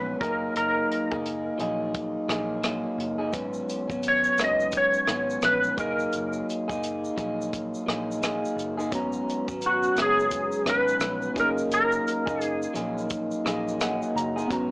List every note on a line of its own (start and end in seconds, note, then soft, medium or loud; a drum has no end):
0.00 0.14 A#1 medium
0.00 0.20 G#2 medium
0.00 0.19 F#3 medium
0.00 0.21 B3 medium
0.00 0.21 C#4 medium
0.00 0.20 B4 medium
0.20 0.48 F#1 medium
0.20 1.14 F#3 medium
0.20 1.13 A#3 medium
0.20 1.12 D#4 medium
0.20 1.11 G#4 medium
0.20 0.56 A#4 medium
0.20 kick loud
0.20 closed hi-hat soft
0.56 0.83 F#1 loud
0.56 1.57 A#4 medium
0.56 closed hi-hat medium
0.91 closed hi-hat medium
1.11 1.50 F#1 loud
1.11 1.58 A#3 soft
1.11 1.59 D#4 soft
1.11 1.59 G#4 soft
1.11 kick medium
1.25 closed hi-hat medium
1.58 2.16 A#1 medium
1.58 2.28 F#3 medium
1.58 2.28 A#3 medium
1.58 2.29 D#4 medium
1.58 2.30 G#4 medium
1.58 closed hi-hat medium
1.94 kick medium
1.94 closed hi-hat medium
2.28 2.85 A#1 medium
2.28 2.61 F#3 medium
2.28 2.62 A#3 medium
2.28 2.63 D#4 medium
2.28 2.64 G#4 medium
2.28 cross-stick medium
2.28 closed hi-hat soft
2.62 3.19 F#3 medium
2.62 3.20 A#3 medium
2.62 3.18 D#4 medium
2.62 3.17 G#4 medium
2.62 cross-stick medium
2.62 closed hi-hat medium
2.98 3.33 F#1 medium
2.98 closed hi-hat soft
3.18 3.33 A#3 soft
3.18 3.33 D#4 medium
3.18 3.33 G#4 medium
3.32 3.62 G#1 medium
3.32 3.89 G#2 medium
3.32 3.89 F#3 medium
3.32 3.88 B3 medium
3.32 3.86 C#4 medium
3.32 kick loud
3.32 closed hi-hat medium
3.32 shaker medium
3.53 shaker medium
3.69 closed hi-hat soft
3.69 shaker soft
3.88 4.28 G#1 medium
3.88 4.38 F#3 soft
3.88 4.39 B3 soft
3.88 4.38 C#4 soft
3.88 kick medium
3.88 shaker soft
4.03 closed hi-hat medium
4.03 shaker medium
4.08 4.42 C#5 medium
4.24 shaker soft
4.38 4.94 F#1 medium
4.38 5.06 G#2 medium
4.38 5.08 F#3 medium
4.38 5.08 B3 medium
4.38 5.10 C#4 medium
4.38 cross-stick medium
4.38 closed hi-hat medium
4.38 shaker medium
4.44 4.77 D#5 medium
4.60 shaker soft
4.72 kick medium
4.72 closed hi-hat medium
4.72 shaker medium
4.77 5.44 C#5 medium
4.94 shaker soft
5.07 5.36 G#1 medium
5.07 5.41 G#2 medium
5.07 5.42 F#3 medium
5.07 5.43 B3 medium
5.07 5.44 C#4 medium
5.07 cross-stick medium
5.07 closed hi-hat soft
5.07 shaker soft
5.30 shaker soft
5.42 5.71 A#1 medium
5.42 5.78 G#2 medium
5.42 5.76 F#3 soft
5.42 5.77 B3 medium
5.42 5.77 C#4 medium
5.42 5.79 B4 medium
5.42 cross-stick medium
5.42 closed hi-hat medium
5.42 shaker medium
5.64 shaker soft
5.77 6.06 F#1 medium
5.77 6.71 F#3 medium
5.77 6.70 A#3 medium
5.77 6.69 D#4 medium
5.77 6.68 G#4 medium
5.77 6.45 A#4 medium
5.77 kick loud
5.77 closed hi-hat medium
5.77 shaker medium
6.00 shaker soft
6.12 6.42 F#1 medium
6.12 closed hi-hat medium
6.12 shaker medium
6.33 shaker soft
6.50 closed hi-hat soft
6.50 shaker soft
6.68 7.08 F#1 medium
6.68 7.17 A#3 soft
6.68 7.17 D#4 soft
6.68 7.17 G#4 medium
6.68 kick medium
6.68 shaker soft
6.83 closed hi-hat medium
6.83 shaker medium
7.04 shaker medium
7.17 7.73 A#1 medium
7.17 7.86 F#3 medium
7.17 7.87 A#3 medium
7.17 7.88 D#4 medium
7.17 7.89 G#4 medium
7.17 kick medium
7.17 closed hi-hat soft
7.17 shaker medium
7.41 shaker soft
7.53 kick medium
7.53 closed hi-hat medium
7.53 shaker medium
7.74 shaker medium
7.86 8.43 A#1 medium
7.86 8.21 F#3 medium
7.86 8.22 A#3 medium
7.86 8.22 D#4 medium
7.86 8.23 G#4 medium
7.86 cross-stick medium
7.86 closed hi-hat soft
7.86 shaker soft
8.11 shaker medium
8.22 8.78 F#3 medium
8.22 8.78 A#3 medium
8.22 8.77 D#4 medium
8.22 8.76 G#4 medium
8.22 cross-stick loud
8.22 closed hi-hat medium
8.22 shaker medium
8.45 shaker soft
8.56 8.92 F#1 medium
8.56 closed hi-hat soft
8.56 shaker medium
8.78 8.92 A#3 soft
8.78 8.92 D#4 medium
8.78 8.92 G#4 medium
8.78 shaker soft
8.90 9.20 G#1 medium
8.90 9.47 G#2 medium
8.90 9.48 F#3 medium
8.90 8.99 A#3 soft
8.90 9.48 B3 medium
8.90 11.32 C#4 medium
8.90 9.46 C#4 loud
8.90 11.33 F#4 medium
8.90 kick loud
8.90 closed hi-hat medium
8.90 shaker medium
8.95 11.34 B3 medium
8.95 11.34 A#5 medium
9.13 shaker medium
9.29 closed hi-hat soft
9.29 shaker soft
9.47 9.87 G#1 medium
9.47 9.95 F#3 soft
9.47 9.95 B3 soft
9.47 9.96 C#4 soft
9.47 kick medium
9.47 shaker soft
9.62 closed hi-hat medium
9.62 shaker medium
9.66 10.00 F#4 medium
9.83 shaker soft
9.95 10.52 F#1 medium
9.95 10.63 G#2 soft
9.95 10.66 F#3 medium
9.95 10.65 B3 soft
9.95 10.67 C#4 medium
9.95 cross-stick medium
9.95 closed hi-hat medium
9.95 shaker medium
10.02 10.71 G#4 medium
10.20 shaker soft
10.31 kick medium
10.31 closed hi-hat medium
10.31 shaker medium
10.52 shaker medium
10.65 10.94 G#1 loud
10.65 10.99 G#2 medium
10.65 11.00 F#3 medium
10.65 11.00 B3 medium
10.65 11.01 C#4 medium
10.65 cross-stick medium
10.65 closed hi-hat soft
10.65 shaker soft
10.69 11.39 B4 medium
10.88 shaker medium
10.99 11.28 A#1 medium
10.99 11.36 G#2 medium
10.99 11.34 F#3 medium
10.99 11.35 B3 medium
10.99 11.36 C#4 medium
10.99 cross-stick loud
10.99 closed hi-hat medium
10.99 shaker medium
11.22 shaker soft
11.34 11.64 F#1 medium
11.34 12.29 F#3 medium
11.34 12.28 A#3 medium
11.34 14.10 C#4 medium
11.34 14.11 D#4 medium
11.34 12.27 D#4 medium
11.34 12.25 G#4 medium
11.34 14.12 G#4 soft
11.34 kick loud
11.34 closed hi-hat medium
11.34 shaker medium
11.39 14.13 A#4 medium
11.39 11.49 A#4 medium
11.58 shaker soft
11.69 11.98 F#1 loud
11.69 closed hi-hat medium
11.69 shaker medium
11.74 12.43 A#4 medium
11.92 shaker soft
12.08 closed hi-hat soft
12.08 shaker soft
12.26 12.66 F#1 loud
12.26 12.74 A#3 soft
12.26 12.74 D#4 soft
12.26 12.75 G#4 soft
12.26 kick medium
12.26 shaker soft
12.41 12.73 G#4 medium
12.41 closed hi-hat medium
12.41 shaker medium
12.62 shaker soft
12.74 13.32 A#1 medium
12.74 13.44 F#3 medium
12.74 13.46 A#3 medium
12.74 13.46 D#4 medium
12.74 13.47 G#4 medium
12.74 closed hi-hat medium
12.74 shaker medium
12.98 shaker soft
13.10 kick medium
13.10 closed hi-hat medium
13.10 shaker medium
13.31 shaker soft
13.45 14.01 A#1 medium
13.45 13.78 F#3 medium
13.45 13.80 A#3 medium
13.45 13.80 D#4 medium
13.45 13.81 G#4 medium
13.45 13.78 D#5 medium
13.45 cross-stick medium
13.45 closed hi-hat soft
13.45 shaker soft
13.68 shaker medium
13.80 14.36 F#3 medium
13.80 14.36 A#3 medium
13.80 14.36 D#4 medium
13.80 14.35 G#4 medium
13.80 14.13 F#5 medium
13.80 cross-stick medium
13.80 closed hi-hat medium
13.80 shaker medium
14.02 shaker soft
14.15 14.43 F#1 loud
14.15 14.48 A#5 medium
14.15 closed hi-hat medium
14.15 shaker medium
14.36 14.50 A#3 medium
14.36 14.51 D#4 medium
14.36 14.50 G#4 medium
14.36 shaker soft
14.48 14.71 G#1 medium
14.48 14.71 G#2 medium
14.48 14.71 F#3 medium
14.48 14.71 B3 medium
14.48 14.71 C#4 medium
14.48 14.71 C#4 loud
14.48 14.71 F#4 medium
14.48 kick loud
14.48 closed hi-hat medium
14.48 shaker medium
14.53 14.71 A#5 medium